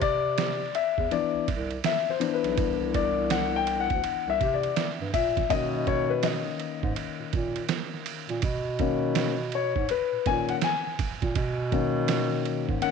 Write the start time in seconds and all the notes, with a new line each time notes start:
Already playing: C3
0.01 D5, kick, ride
0.38 snare, hi-hat pedal, ride
0.62 snare
0.75 E5, ride
0.98 E2, kick
1.11 E3 B3 D4 D5, ride
1.34 C2
1.48 C2, kick, ride
1.71 ride
1.84 E5, snare, hi-hat pedal, ride
2.09 C5, snare
2.19 E3 B3 D4, ride
2.34 B4
2.44 B1, snare, ride
2.57 C2, kick, ride
2.94 D5, kick, ride
3.30 F#5, snare, hi-hat pedal, ride
3.56 G5
3.67 ride
3.80 F#5
3.90 D2, kick, ride
4.04 ride
4.27 C2 E5
4.41 C3, kick, ride
4.54 D5
4.63 ride
4.76 snare, hi-hat pedal, ride
5.01 G2, snare
5.14 A#2 E5, kick, ride
5.37 kick, snare, ride
5.50 B2 D#3 A#3 C#4 D#5, kick, ride
5.87 C#5, kick, ride
6.10 B4
6.23 D#5, snare, hi-hat pedal, ride
6.47 snare
6.60 ride
6.83 G#2, kick
6.96 ride
7.20 A#2
7.33 A#2, kick, ride
7.56 ride
7.69 snare, hi-hat pedal, ride
7.94 snare
8.06 ride
8.29 A#2, snare, ride
8.42 B2, kick, ride
8.79 D#3 A#3 C#4, kick, ride
9.15 snare, hi-hat pedal, ride
9.39 snare
9.52 C#5, ride
9.76 G#2, kick
9.89 B4, ride
10.13 A#2
10.26 A#2 D#3 A#3 C#4 G#5, kick, ride
10.49 F#5, ride
10.61 G#5, snare, hi-hat pedal, ride
10.87 snare
10.99 kick, ride
11.22 A#2, kick, snare, ride
11.35 B2, kick, ride
11.72 D#3 A#3 C#4, kick, ride
12.08 snare, hi-hat pedal, ride
12.32 snare
12.45 ride
12.69 G#2, kick
12.82 D#3 A#3 C#4 F#5, ride